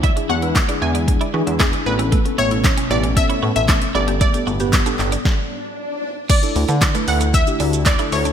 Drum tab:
CC |----------------|----------------|----------------|x---------------|
HH |xx-xxx-xxx-xxx-x|xx-xxx-xxx-xxx-x|xx-xxx-x--------|xxoxxxoxxxoxxxox|
SH |----------------|----------------|xxxxxxxx--------|xxxxxxxxxxxxxxxx|
CP |----x-------x---|----x-------x---|----x-x---------|----x-------x---|
SD |----o-------o---|----o-------o---|----o---o-------|----o-------o---|
BD |o---o---o---o---|o---o---o---o---|o---o---o-------|o---o---o---o---|